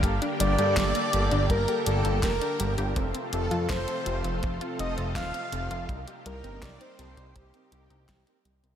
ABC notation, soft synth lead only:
X:1
M:4/4
L:1/16
Q:1/4=82
K:Gm
V:1 name="Soft synth lead"
z2 d6 B2 A2 B3 z | z2 A2 c4 z2 e2 f4 | z2 B2 d c3 G6 z2 |]